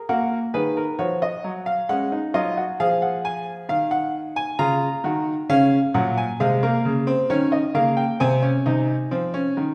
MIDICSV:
0, 0, Header, 1, 2, 480
1, 0, Start_track
1, 0, Key_signature, 6, "major"
1, 0, Tempo, 903614
1, 38, Time_signature, 3, 2, 24, 8
1, 5175, End_track
2, 0, Start_track
2, 0, Title_t, "Grand piano"
2, 0, Program_c, 0, 0
2, 48, Note_on_c, 0, 58, 76
2, 48, Note_on_c, 0, 66, 71
2, 48, Note_on_c, 0, 78, 74
2, 195, Note_off_c, 0, 58, 0
2, 195, Note_off_c, 0, 66, 0
2, 195, Note_off_c, 0, 78, 0
2, 287, Note_on_c, 0, 68, 62
2, 287, Note_on_c, 0, 71, 77
2, 288, Note_on_c, 0, 51, 66
2, 401, Note_off_c, 0, 68, 0
2, 409, Note_on_c, 0, 70, 62
2, 434, Note_off_c, 0, 71, 0
2, 435, Note_off_c, 0, 51, 0
2, 522, Note_off_c, 0, 70, 0
2, 524, Note_on_c, 0, 53, 67
2, 524, Note_on_c, 0, 73, 75
2, 525, Note_on_c, 0, 66, 62
2, 639, Note_off_c, 0, 73, 0
2, 648, Note_on_c, 0, 75, 72
2, 672, Note_off_c, 0, 53, 0
2, 766, Note_on_c, 0, 54, 63
2, 794, Note_off_c, 0, 75, 0
2, 882, Note_on_c, 0, 77, 73
2, 913, Note_off_c, 0, 54, 0
2, 988, Note_off_c, 0, 66, 0
2, 998, Note_off_c, 0, 77, 0
2, 1006, Note_on_c, 0, 56, 64
2, 1006, Note_on_c, 0, 78, 84
2, 1008, Note_on_c, 0, 61, 69
2, 1120, Note_off_c, 0, 61, 0
2, 1125, Note_on_c, 0, 63, 61
2, 1152, Note_off_c, 0, 78, 0
2, 1153, Note_off_c, 0, 56, 0
2, 1239, Note_off_c, 0, 63, 0
2, 1244, Note_on_c, 0, 54, 65
2, 1244, Note_on_c, 0, 65, 64
2, 1244, Note_on_c, 0, 75, 74
2, 1358, Note_off_c, 0, 65, 0
2, 1367, Note_on_c, 0, 66, 66
2, 1391, Note_off_c, 0, 54, 0
2, 1391, Note_off_c, 0, 75, 0
2, 1479, Note_off_c, 0, 66, 0
2, 1487, Note_on_c, 0, 53, 67
2, 1487, Note_on_c, 0, 68, 74
2, 1487, Note_on_c, 0, 77, 85
2, 1599, Note_off_c, 0, 77, 0
2, 1605, Note_on_c, 0, 78, 71
2, 1717, Note_off_c, 0, 78, 0
2, 1725, Note_on_c, 0, 80, 80
2, 1871, Note_off_c, 0, 80, 0
2, 1946, Note_off_c, 0, 53, 0
2, 1959, Note_on_c, 0, 51, 63
2, 1961, Note_on_c, 0, 77, 84
2, 2075, Note_off_c, 0, 77, 0
2, 2077, Note_on_c, 0, 78, 82
2, 2225, Note_off_c, 0, 78, 0
2, 2318, Note_on_c, 0, 80, 93
2, 2416, Note_off_c, 0, 68, 0
2, 2420, Note_off_c, 0, 51, 0
2, 2431, Note_off_c, 0, 80, 0
2, 2437, Note_on_c, 0, 49, 72
2, 2438, Note_on_c, 0, 65, 82
2, 2438, Note_on_c, 0, 82, 100
2, 2584, Note_off_c, 0, 49, 0
2, 2585, Note_off_c, 0, 65, 0
2, 2677, Note_on_c, 0, 51, 79
2, 2679, Note_on_c, 0, 66, 76
2, 2824, Note_off_c, 0, 51, 0
2, 2826, Note_off_c, 0, 66, 0
2, 2901, Note_off_c, 0, 82, 0
2, 2918, Note_on_c, 0, 49, 77
2, 2919, Note_on_c, 0, 61, 106
2, 2919, Note_on_c, 0, 77, 93
2, 3065, Note_off_c, 0, 49, 0
2, 3066, Note_off_c, 0, 61, 0
2, 3066, Note_off_c, 0, 77, 0
2, 3157, Note_on_c, 0, 46, 76
2, 3157, Note_on_c, 0, 78, 82
2, 3158, Note_on_c, 0, 54, 77
2, 3272, Note_off_c, 0, 78, 0
2, 3280, Note_on_c, 0, 80, 74
2, 3305, Note_off_c, 0, 46, 0
2, 3305, Note_off_c, 0, 54, 0
2, 3393, Note_off_c, 0, 80, 0
2, 3400, Note_on_c, 0, 56, 91
2, 3401, Note_on_c, 0, 48, 77
2, 3402, Note_on_c, 0, 77, 75
2, 3513, Note_off_c, 0, 56, 0
2, 3521, Note_on_c, 0, 58, 88
2, 3547, Note_off_c, 0, 48, 0
2, 3639, Note_on_c, 0, 49, 77
2, 3667, Note_off_c, 0, 58, 0
2, 3756, Note_on_c, 0, 60, 97
2, 3786, Note_off_c, 0, 49, 0
2, 3863, Note_off_c, 0, 77, 0
2, 3871, Note_off_c, 0, 60, 0
2, 3877, Note_on_c, 0, 51, 79
2, 3877, Note_on_c, 0, 61, 96
2, 3877, Note_on_c, 0, 73, 77
2, 3991, Note_off_c, 0, 73, 0
2, 3994, Note_on_c, 0, 75, 68
2, 4025, Note_off_c, 0, 51, 0
2, 4025, Note_off_c, 0, 61, 0
2, 4110, Note_off_c, 0, 75, 0
2, 4113, Note_on_c, 0, 49, 68
2, 4115, Note_on_c, 0, 58, 84
2, 4116, Note_on_c, 0, 77, 77
2, 4231, Note_off_c, 0, 77, 0
2, 4232, Note_on_c, 0, 79, 70
2, 4262, Note_off_c, 0, 49, 0
2, 4263, Note_off_c, 0, 58, 0
2, 4349, Note_off_c, 0, 79, 0
2, 4357, Note_on_c, 0, 60, 106
2, 4357, Note_on_c, 0, 80, 85
2, 4359, Note_on_c, 0, 48, 93
2, 4471, Note_off_c, 0, 60, 0
2, 4475, Note_on_c, 0, 61, 80
2, 4506, Note_off_c, 0, 48, 0
2, 4591, Note_off_c, 0, 61, 0
2, 4599, Note_on_c, 0, 63, 80
2, 4602, Note_on_c, 0, 48, 76
2, 4747, Note_off_c, 0, 63, 0
2, 4749, Note_off_c, 0, 48, 0
2, 4841, Note_on_c, 0, 60, 83
2, 4842, Note_on_c, 0, 53, 76
2, 4955, Note_off_c, 0, 60, 0
2, 4960, Note_on_c, 0, 61, 86
2, 4990, Note_off_c, 0, 53, 0
2, 5084, Note_on_c, 0, 51, 75
2, 5110, Note_off_c, 0, 61, 0
2, 5175, Note_off_c, 0, 51, 0
2, 5175, Note_off_c, 0, 80, 0
2, 5175, End_track
0, 0, End_of_file